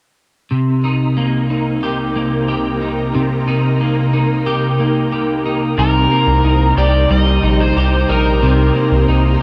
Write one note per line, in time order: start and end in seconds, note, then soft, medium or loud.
0.50 5.74 C2 medium
0.50 5.74 C3 medium
0.50 3.13 C3 medium
0.50 5.74 D#4 medium
0.50 5.74 A#4 medium
0.84 1.50 D#4 soft
1.17 2.15 A#3 soft
1.50 2.81 D#4 soft
1.83 2.48 G4 medium
2.16 3.80 A#3 soft
2.48 4.46 G4 soft
2.81 3.47 D#4 soft
3.15 5.77 C3 medium
3.48 4.13 D#4 soft
3.80 4.79 A#3 medium
4.13 5.45 D#4 soft
4.46 5.12 G4 medium
4.80 6.11 A#3 medium
5.12 5.78 G4 soft
5.45 6.44 D#4 medium
5.78 6.07 C2 medium
5.78 8.41 C3 medium
5.78 9.42 D#4 medium
5.78 9.42 G4 medium
5.78 6.77 G4 soft
5.78 6.77 A#4 medium
5.78 9.42 C5 medium
5.78 9.42 A#5 medium
6.12 8.75 A#3 soft
6.27 6.42 C2 medium
6.44 6.73 C2 medium
6.44 7.43 D#4 medium
6.78 7.06 C2 medium
6.78 7.76 G4 medium
6.78 7.11 D5 medium
7.10 7.39 C2 medium
7.10 9.42 G3 medium
7.10 7.61 D#5 medium
7.43 7.72 A#1 medium
7.43 8.09 D#4 medium
7.60 8.11 C5 medium
7.77 8.05 C2 medium
7.77 8.43 G4 medium
8.09 8.44 A#1 medium
8.09 9.08 D#4 medium
8.09 9.04 A#4 medium
8.42 8.71 C2 loud
8.42 9.42 C3 medium
8.42 9.40 G4 medium
8.75 9.42 A#3 soft
8.92 9.06 C2 medium
9.08 9.37 C2 medium
9.08 9.42 D#4 medium